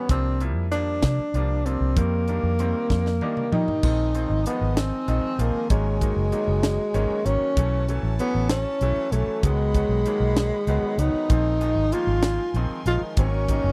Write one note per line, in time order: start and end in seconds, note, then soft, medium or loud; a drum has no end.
0.09 0.55 C2 medium
0.09 0.35 F3 medium
0.09 0.35 G3 medium
0.09 0.35 A#3 medium
0.09 0.43 C4 medium
0.09 0.35 D4 medium
0.09 kick medium
0.09 closed hi-hat medium
0.40 0.64 F3 medium
0.40 0.64 G3 soft
0.40 0.64 A#3 medium
0.40 0.64 E4 medium
0.40 closed hi-hat medium
0.56 1.00 F2 medium
0.72 1.18 F3 medium
0.72 1.18 G3 medium
0.72 1.18 A#3 medium
0.72 1.67 D4 medium
0.72 1.18 D4 medium
0.72 closed hi-hat medium
1.02 1.17 C3 medium
1.02 kick medium
1.02 snare loud
1.02 closed hi-hat medium
1.19 muted fingered electric bass stroke soft
1.34 1.78 C2 medium
1.34 1.58 F3 medium
1.34 1.58 G3 medium
1.34 1.58 A#3 medium
1.34 1.58 D4 medium
1.34 closed hi-hat medium
1.66 1.97 F3 medium
1.66 1.96 G3 medium
1.66 1.96 A#3 medium
1.66 1.99 C4 medium
1.66 1.97 D4 medium
1.66 closed hi-hat medium
1.80 1.95 C2 medium
1.96 2.41 F2 medium
1.96 2.21 D#3 medium
1.96 2.22 G3 medium
1.96 3.52 A#3 medium
1.96 2.22 A#3 medium
1.96 2.22 C4 medium
1.96 kick loud
1.96 closed hi-hat medium
2.28 2.51 D#3 medium
2.28 2.51 G3 medium
2.28 2.51 A#3 medium
2.28 2.51 D4 medium
2.28 closed hi-hat medium
2.43 2.73 F2 medium
2.59 3.05 D#3 medium
2.59 3.05 G3 medium
2.59 3.05 A#3 medium
2.59 3.05 C4 medium
2.59 closed hi-hat medium
2.90 3.19 F2 medium
2.90 kick medium
2.90 snare medium
3.06 snare medium
3.21 3.44 D#3 medium
3.21 3.45 G3 medium
3.21 3.45 A#3 medium
3.21 3.45 D4 medium
3.21 3.51 D#5 medium
3.21 high tom medium
3.37 mid tom medium
3.52 3.82 D#3 medium
3.52 3.67 F3 medium
3.52 3.83 G3 medium
3.52 3.83 A#3 medium
3.52 3.83 D#4 medium
3.52 4.42 D#4 medium
3.52 3.81 G5 medium
3.52 mid tom medium
3.68 muted fingered electric bass stroke soft
3.68 floor tom medium
3.83 4.27 A#1 medium
3.83 4.08 D#3 medium
3.83 4.08 F3 medium
3.83 4.09 G#3 medium
3.83 4.09 C4 medium
3.83 5.68 D#4 medium
3.83 7.53 A#4 medium
3.83 5.68 D#5 medium
3.83 7.53 G#5 medium
3.83 kick medium
3.83 crash medium
4.14 4.37 D#3 medium
4.14 4.38 F3 medium
4.14 4.38 G#3 medium
4.14 4.38 C4 medium
4.14 closed hi-hat medium
4.30 4.44 G#1 medium
4.46 4.92 D#3 medium
4.46 4.92 F3 medium
4.46 4.92 G#3 medium
4.46 4.78 B3 medium
4.46 4.92 D#4 medium
4.46 closed hi-hat medium
4.61 4.91 G#1 medium
4.77 5.42 C4 medium
4.77 snare loud
4.77 closed hi-hat medium
5.08 5.23 A#1 medium
5.08 5.31 D#3 medium
5.08 5.31 F3 medium
5.08 5.31 G#3 medium
5.08 5.31 D#4 medium
5.08 closed hi-hat medium
5.24 muted fingered electric bass stroke soft
5.39 5.53 A#1 medium
5.39 5.69 D#3 medium
5.39 5.70 F3 medium
5.39 5.70 G#3 medium
5.39 5.70 A#3 medium
5.39 5.70 C4 medium
5.39 closed hi-hat medium
5.70 6.14 G#1 medium
5.70 5.95 D#3 medium
5.70 5.95 F#3 medium
5.70 7.27 G#3 medium
5.70 5.95 A#3 medium
5.70 5.95 C#4 medium
5.70 7.55 F#4 medium
5.70 11.27 C#5 medium
5.70 kick loud
5.70 closed hi-hat medium
6.01 6.24 D#3 medium
6.01 6.24 F#3 medium
6.01 6.24 A#3 medium
6.01 6.25 D#4 medium
6.01 kick medium
6.01 closed hi-hat medium
6.16 6.31 F#1 medium
6.32 6.78 D#3 medium
6.32 6.78 F#3 medium
6.32 6.78 A#3 medium
6.32 6.78 D#4 medium
6.32 closed hi-hat medium
6.48 6.77 F#1 medium
6.63 snare loud
6.63 closed hi-hat medium
6.94 7.09 G#1 medium
6.94 7.17 D#3 medium
6.94 7.17 F#3 medium
6.94 7.18 A#3 medium
6.94 7.18 C#4 medium
6.94 closed hi-hat medium
7.25 7.40 G#1 medium
7.25 7.56 D#3 medium
7.25 7.56 F#3 medium
7.25 7.57 A#3 medium
7.25 7.92 C#4 loud
7.25 7.56 C#4 medium
7.25 closed hi-hat medium
7.57 8.01 B1 medium
7.57 7.82 E3 medium
7.57 7.82 F#3 medium
7.57 7.82 A3 medium
7.57 7.82 C#4 medium
7.57 9.42 E4 medium
7.57 9.42 B4 medium
7.57 9.42 A5 medium
7.57 kick loud
7.57 closed hi-hat medium
7.88 8.11 E3 medium
7.88 8.11 F#3 medium
7.88 8.11 A3 medium
7.88 8.12 C#4 medium
7.88 closed hi-hat medium
8.03 8.18 A1 medium
8.19 8.65 E3 medium
8.19 8.65 F#3 medium
8.19 8.66 A3 medium
8.19 8.48 B3 medium
8.19 8.66 C#4 medium
8.19 closed hi-hat medium
8.35 8.64 A1 medium
8.49 9.14 C#4 medium
8.49 snare loud
8.49 closed hi-hat medium
8.81 8.96 B1 medium
8.81 9.04 E3 medium
8.81 9.05 F#3 medium
8.81 9.05 A3 medium
8.81 9.05 E4 medium
8.81 closed hi-hat medium
9.12 9.27 B1 medium
9.12 9.44 E3 medium
9.12 9.42 F#3 medium
9.12 9.46 A3 medium
9.12 9.44 A3 medium
9.12 9.44 C#4 medium
9.12 closed hi-hat medium
9.27 muted fingered electric bass stroke soft
9.43 9.87 C#2 medium
9.43 9.68 D#3 medium
9.43 9.68 F#3 medium
9.43 11.01 G#3 medium
9.43 9.69 G#3 medium
9.43 9.69 B3 medium
9.43 13.13 D#4 medium
9.43 11.28 F#5 medium
9.43 11.28 B5 medium
9.43 kick medium
9.43 closed hi-hat medium
9.74 9.98 D#3 medium
9.74 9.98 F#3 medium
9.74 9.98 G#3 medium
9.74 9.98 B3 medium
9.74 kick medium
9.74 closed hi-hat medium
9.89 10.04 B1 medium
10.06 10.52 D#3 medium
10.06 10.52 F#3 medium
10.06 10.52 G#3 medium
10.06 10.53 A#3 medium
10.06 closed hi-hat medium
10.20 10.50 B1 medium
10.36 snare loud
10.36 closed hi-hat medium
10.67 10.82 C#2 medium
10.67 10.91 D#3 medium
10.67 10.91 F#3 medium
10.67 10.91 G#3 medium
10.67 10.91 B3 medium
10.67 closed hi-hat medium
10.83 muted fingered electric bass stroke soft
10.98 11.13 C#2 medium
10.98 11.29 D#3 medium
10.98 11.31 F#3 medium
10.98 11.29 G#3 medium
10.98 11.31 B3 medium
10.98 11.94 D#4 loud
10.98 closed hi-hat medium
11.14 muted fingered electric bass stroke soft
11.29 11.74 A#1 medium
11.29 11.55 D#3 medium
11.29 11.55 F3 medium
11.29 11.55 G#3 medium
11.29 11.55 C4 medium
11.29 13.72 A#4 medium
11.29 13.72 G#5 medium
11.29 13.15 C6 medium
11.29 kick loud
11.29 closed hi-hat medium
11.61 11.84 D#3 medium
11.61 11.84 F3 medium
11.61 11.84 G#3 medium
11.61 11.85 D#4 medium
11.61 closed hi-hat medium
11.76 11.91 G#1 medium
11.92 12.39 D#3 medium
11.92 12.39 F3 medium
11.92 12.39 G#3 medium
11.92 12.39 A#3 medium
11.92 12.59 F4 loud
11.92 closed hi-hat medium
12.07 12.37 G#1 medium
12.23 snare loud
12.23 closed hi-hat medium
12.54 12.69 A#1 medium
12.54 12.78 D#3 medium
12.54 12.79 F3 medium
12.54 12.79 G#3 medium
12.54 12.79 C4 medium
12.54 closed hi-hat medium
12.86 13.01 A#1 medium
12.86 13.17 D#3 medium
12.86 13.18 F3 medium
12.86 13.18 G#3 medium
12.86 13.18 D#4 medium
12.86 13.01 F4 medium
12.86 closed hi-hat medium
13.01 muted fingered electric bass stroke soft
13.17 13.61 G#1 medium
13.17 13.43 D#3 medium
13.17 13.43 F#3 medium
13.17 13.43 A#3 medium
13.17 13.72 C#4 loud
13.17 13.43 C#4 medium
13.17 13.72 F#4 medium
13.17 13.72 C#6 medium
13.17 kick loud
13.17 closed hi-hat medium
13.48 13.72 D#3 medium
13.48 13.72 F#3 medium
13.48 13.72 A#3 medium
13.48 13.72 D#4 medium
13.48 kick medium
13.48 closed hi-hat medium
13.64 13.72 F#1 medium